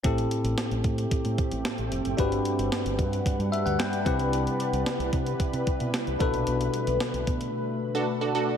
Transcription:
<<
  \new Staff \with { instrumentName = "Analog polysynth" } { \time 4/4 \key a \dorian \tempo 4 = 112 r1 | r1 | r1 | r2 r8. <d' fis' a'>16 r16 <d' fis' a'>16 <d' fis' a'>8 | }
  \new Staff \with { instrumentName = "Tine electric piano" } { \time 4/4 \key a \dorian << { r1 | r2 r8 e''16 fis''16 g''4 | r1 | r1 | } \\ { <c' e' g' a'>1 | <d' fis' g' b'>2.~ <d' fis' g' b'>8 <c' e' g' b'>8~ | <c' e' g' b'>2.~ <c' e' g' b'>8 <d' fis' a' b'>8~ | <d' fis' a' b'>2.~ <d' fis' a' b'>8 r8 | } >> }
  \new Staff \with { instrumentName = "Tine electric piano" } { \clef bass \time 4/4 \key a \dorian a,4. r2 r8 | g,4. r2 c8~ | c4 r2 r8 b,8~ | b,4 r2. | }
  \new Staff \with { instrumentName = "Ambient pad" } { \time 4/4 \key a \dorian <a c' g'>1 | <g d' b' fis''>2.~ <g d' b' fis''>8 <c e' b'>8~ | <c e' b'>2.~ <c e' b'>8 <d a>8~ | <d a>1 | }
  \new Staff \with { instrumentName = "Fingered electric bass" } { \clef bass \time 4/4 \key a \dorian a,,8 r16 a,,16 r16 a,,16 a,8 r16 a,16 r16 a,,16 r16 a,,16 f,,16 fis,,16 | g,,8 r16 g,,16 r16 g,,16 g,8 r16 g,16 r16 d,16 r8 c,8~ | c,8 r16 c,16 r16 c,16 c8 r16 c16 r16 b,16 r16 c,16 b,,16 bes,,16 | b,,8 r16 b,,16 r16 b,,16 b,8 r2 | }
  \new DrumStaff \with { instrumentName = "Drums" } \drummode { \time 4/4 <hh bd>16 hh16 hh16 hh16 <hh sn>16 hh16 <hh bd>16 hh16 <hh bd>16 hh16 <hh bd>16 hh16 <hh sn>16 hh16 hh16 hh16 | <hh bd>16 hh16 hh16 hh16 <hh sn>16 hh16 <hh bd>16 hh16 <hh bd>16 hh16 hh16 hh16 <hh sn>16 hh16 <hh bd>16 hh16 | hh16 hh16 hh16 hh16 <hh sn>16 hh16 <hh bd>16 hh16 <hh bd>16 hh16 <hh bd>16 hh16 <hh sn>16 hh16 <hh bd>16 hh16 | hh16 hh16 hh16 hh16 <hh sn>16 hh16 <hh bd>16 hh16 r4 r4 | }
>>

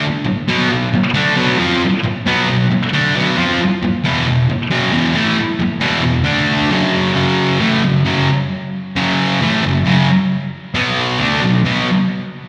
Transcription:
\new Staff \with { instrumentName = "Distorted electric guitar" } { \clef bass \time 4/4 \key fis \minor \tempo 4 = 134 r4 <b, fis b>8 <b, fis>8 r8 <d a d'>8 <b, fis b>8 <eis bis eis'>8 | r4 <b, fis b>8 <b, fis>8 r8 <d a d'>8 <b, fis b>8 <eis bis eis'>8 | r4 <e, b, e>8 <e, b,>8 r8 <fis, cis fis>8 <e, b, e>8 <a, e a>8 | r4 <e, b, e>8 <e, b,>8 <d a d'>4 <fis, cis fis>4 |
<fis, cis fis>4 <a, e a>8 <fis, cis>8 <fis, cis fis>8 r4. | <fis, cis fis>4 <a, e a>8 <fis, cis>8 <fis, cis fis>8 r4. | <b, fis b>4 <d a d'>8 <b, fis>8 <b, fis b>8 r4. | }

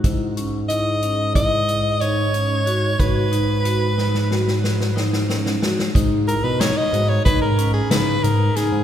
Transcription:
<<
  \new Staff \with { instrumentName = "Soprano saxophone" } { \time 9/8 \key gis \minor \tempo 4. = 61 r4 dis''4 dis''4 cis''4. | b'2.~ b'8 r4 | r8 ais'16 b'16 cis''16 dis''8 cis''16 b'16 ais'8 gis'16 b'8 ais'8 gis'8 | }
  \new Staff \with { instrumentName = "Vibraphone" } { \time 9/8 \key gis \minor e'8 cis'8 e'8 cis'8 e'8 e'8 dis'8 cis'8 fis'8 | fis'8 dis'8 fis'8 dis'8 fis'8 fis'8 dis'8 cis'8 fis'8 | dis'8 e'8 dis'8 fis'8 dis'8 cis'8 dis'8 dis'8 dis'8 | }
  \new Staff \with { instrumentName = "Analog synth bass" } { \clef bass \time 9/8 \key gis \minor gis,1~ gis,8 | gis,1~ gis,8 | gis,8. b,8 r16 gis,8 r16 gis,8. cis8 gis,8 r16 gis,16 | }
  \new DrumStaff \with { instrumentName = "Drums" } \drummode { \time 9/8 <hh bd>8 hh8 hh8 hh8 <hh bd>8 hh8 hh8 hh8 hh8 | <hh bd>8 hh8 hh8 sn16 sn16 sn16 sn16 sn16 sn16 sn16 sn16 sn16 sn16 sn16 sn16 | <hh bd>8 hh8 <hh sn>8 hh8 <hh bd>8 hh8 <hh sn>8 hh8 <hh sn>8 | }
>>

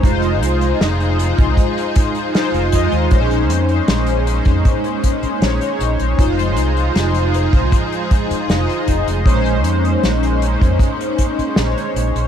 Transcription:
<<
  \new Staff \with { instrumentName = "Analog polysynth" } { \time 4/4 \key bes \minor \tempo 4 = 78 <aes ees' f' c''>4. <aes ees' f' c''>4. <aes ees' f' c''>8 <aes ees' f' ees''>8 | <aes des' ees' c''>4. <aes des' ees' c''>4. <aes des' ees' des''>4 | <aes ees' f' c''>4. <aes ees' f' c''>4. <aes ees' f' ees''>4 | <aes des' ees' c''>4. <aes des' ees' c''>4. <aes des' ees' des''>4 | }
  \new Staff \with { instrumentName = "String section" } { \time 4/4 \key bes \minor <f ees' aes'>1 | <aes bes des'>1 | <f ees' aes'>1 | <aes bes des'>1 | }
  \new Staff \with { instrumentName = "Fingered electric bass" } { \clef bass \time 4/4 \key bes \minor f,,8 c,16 r16 f,,8. c,16 r4 r16 f,,16 f,16 ees,16 | bes,,8 f,16 r16 bes,,8. f,16 r4 bes,,16 r16 bes,,16 bes,,16 | f,,8 c,16 r16 f,,8. c,16 r4 f,,16 r16 f,,16 f,,16 | bes,,8 f,16 r16 bes,,8. f,16 r4 bes,,16 r16 bes,,16 bes,,16 | }
  \new DrumStaff \with { instrumentName = "Drums" } \drummode { \time 4/4 <hh bd>16 hh16 hh16 hh16 <hh sn>16 hh16 hh16 <hh bd>16 <hh bd>16 hh16 <hh bd>16 hh16 <hh sn>16 hh16 <hh bd>16 hh16 | <hh bd>16 hh16 hh16 hh16 <hh sn>16 hh16 hh16 <hh bd>16 <hh bd>16 hh16 <hh bd>16 hh16 <hh sn>16 hh16 hh16 hh16 | <hh bd>16 hh16 hh16 hh16 <hh sn>16 hh16 hh16 <hh bd>16 <hh bd>16 hh16 <hh bd>16 hh16 <hh sn>16 hh16 <hh bd>16 hh16 | <hh bd>16 hh16 hh16 hh16 <hh sn>16 hh16 hh16 <hh bd>16 <hh bd>16 hh16 <hh bd>16 hh16 <hh sn>16 hh16 hh16 hh16 | }
>>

